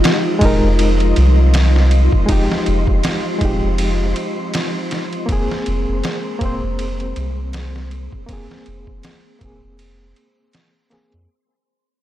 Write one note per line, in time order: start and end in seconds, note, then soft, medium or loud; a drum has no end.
0.00 0.36 G#3 medium
0.00 11.31 C4 medium
0.00 0.37 D#4 medium
0.00 5.24 F4 medium
0.00 0.39 G4 medium
0.00 11.31 C5 medium
0.00 5.24 D#5 medium
0.04 snare loud
0.04 ride medium
0.39 0.60 D#1 medium
0.39 2.24 G#3 medium
0.39 2.25 D#4 medium
0.39 kick medium
0.39 ride medium
0.45 2.27 A#4 medium
0.63 1.13 F1 medium
0.79 ride medium
1.00 ride soft
1.16 2.09 C2 medium
1.16 ride medium
1.54 snare loud
1.54 ride medium
1.76 snare medium
1.91 ride medium
2.12 kick medium
2.26 2.47 F1 loud
2.26 3.36 G#3 medium
2.26 3.37 D#4 medium
2.26 kick loud
2.26 ride medium
2.32 3.39 G4 loud
2.52 snare medium
2.66 2.85 F1 loud
2.66 ride medium
2.87 3.02 F1 medium
2.87 kick medium
3.03 snare loud
3.03 ride medium
3.39 3.60 D#1 medium
3.39 5.23 G#3 medium
3.39 5.25 D#4 medium
3.39 kick medium
3.39 ride medium
3.45 5.26 G4 medium
3.63 4.13 F1 medium
3.78 ride medium
4.16 ride medium
4.54 snare loud
4.54 ride medium
4.91 snare soft
4.91 ride medium
5.13 ride soft
5.26 5.47 F1 loud
5.26 6.36 A#3 medium
5.26 6.37 C4 medium
5.26 11.24 G#4 medium
5.26 11.24 C5 medium
5.26 8.25 A#5 medium
5.26 kick loud
5.26 ride medium
5.32 6.39 G#4 medium
5.51 snare soft
5.66 5.85 F1 loud
5.66 ride medium
5.88 6.02 F1 medium
6.04 snare loud
6.04 ride medium
6.39 6.60 D#1 medium
6.39 8.23 A#3 medium
6.39 8.25 C4 medium
6.39 kick medium
6.39 ride medium
6.45 8.27 C5 medium
6.63 7.13 F1 medium
6.79 ride medium
7.00 ride soft
7.16 8.08 C2 medium
7.16 ride medium
7.53 snare loud
7.53 ride medium
7.76 snare soft
7.91 ride medium
8.12 kick medium
8.26 8.47 F1 loud
8.26 9.36 A#3 medium
8.26 9.37 C4 medium
8.26 11.26 C6 medium
8.26 kick loud
8.26 ride medium
8.33 9.39 G#4 medium
8.51 snare soft
8.66 8.85 F1 loud
8.66 ride medium
8.87 9.02 F1 medium
8.87 kick medium
9.03 snare loud
9.03 ride medium
9.39 9.60 D#1 medium
9.39 10.87 A#3 medium
9.39 10.88 C4 medium
9.39 kick medium
9.39 ride medium
9.45 10.90 G#4 medium
9.63 10.13 F1 medium
9.79 ride medium
10.16 ride medium
10.53 snare loud
10.53 ride medium
10.90 11.24 A#3 medium
10.90 11.25 C4 medium
10.90 11.26 G#4 medium
10.90 snare soft
10.90 ride medium
11.12 11.27 F2 medium
11.12 ride soft